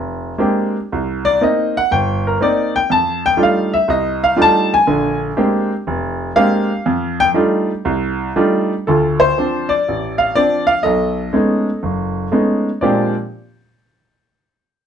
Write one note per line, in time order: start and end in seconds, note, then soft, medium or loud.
0.00 0.32 F1 medium
0.38 0.76 G#3 medium
0.38 0.76 A#3 soft
0.38 0.76 C4 medium
0.38 0.76 D4 medium
0.38 0.76 G4 medium
0.92 1.36 C2 medium
1.25 1.41 D5 medium
1.41 1.77 A#3 medium
1.41 1.77 C4 soft
1.41 1.77 D#4 medium
1.41 1.76 D#5 medium
1.77 1.92 F#5 medium
1.91 2.35 G1 medium
1.91 2.25 G5 medium
2.27 2.41 A#4 medium
2.40 2.76 A#3 medium
2.40 2.76 C4 medium
2.40 2.77 D#4 medium
2.40 2.75 D5 medium
2.76 2.90 G5 loud
2.90 3.33 F2 medium
2.90 3.24 A5 medium
3.26 3.40 G5 loud
3.37 3.74 G3 medium
3.37 3.73 A3 soft
3.37 3.73 D4 soft
3.37 3.74 D#4 soft
3.37 3.74 F4 medium
3.43 3.74 F5 medium
3.74 3.88 E5 medium
3.88 4.31 C2 medium
3.88 4.22 D#5 medium
4.24 4.38 F5 medium
4.36 4.72 G3 medium
4.36 4.73 A3 soft
4.36 4.73 D4 soft
4.36 4.73 D#4 medium
4.36 4.73 F4 medium
4.42 4.73 A5 loud
4.74 5.18 G#5 loud
4.87 5.30 A#1 medium
4.87 5.30 D3 medium
5.37 5.72 G#3 medium
5.37 5.72 A#3 medium
5.37 5.72 C4 medium
5.37 5.72 D4 medium
5.37 5.72 G4 medium
5.87 6.29 F1 medium
6.36 6.71 G#3 medium
6.36 6.70 A#3 medium
6.36 6.71 C4 medium
6.36 6.71 D4 medium
6.36 6.71 G4 medium
6.36 7.14 F5 medium
6.86 7.28 F2 medium
7.20 7.29 G5 loud
7.34 7.70 G3 medium
7.34 7.70 A3 medium
7.34 7.70 D4 medium
7.34 7.70 D#4 medium
7.34 7.70 F4 medium
7.85 8.29 C2 medium
8.36 8.72 G3 medium
8.36 8.72 A3 medium
8.36 8.72 D4 medium
8.36 8.72 D#4 medium
8.36 8.72 F4 medium
8.87 9.31 D2 medium
8.87 9.83 F4 medium
8.87 9.18 A4 medium
9.20 9.71 C5 loud
9.38 9.73 F3 soft
9.38 9.72 C4 soft
9.38 9.73 D4 medium
9.69 10.20 D5 medium
9.88 10.30 A1 medium
10.18 10.33 F5 medium
10.35 10.70 F3 soft
10.35 10.71 C4 soft
10.35 10.71 D4 medium
10.35 10.70 D5 medium
10.67 10.84 F5 medium
10.83 11.28 B1 medium
10.83 12.28 A4 medium
10.83 12.27 D#5 medium
11.33 11.68 G#3 medium
11.33 11.68 A3 soft
11.33 11.69 B3 soft
11.33 11.68 C#4 soft
11.33 11.69 D#4 medium
11.83 12.26 F#1 medium
12.32 12.68 G#3 soft
12.32 12.68 A3 soft
12.32 12.68 B3 soft
12.32 12.68 C#4 soft
12.32 12.68 D#4 medium
12.81 13.13 A#2 medium
12.81 13.13 F3 medium
12.81 13.13 G#3 medium
12.81 13.13 C4 medium
12.81 13.13 D4 medium
12.81 13.13 G4 medium
12.81 13.13 D5 medium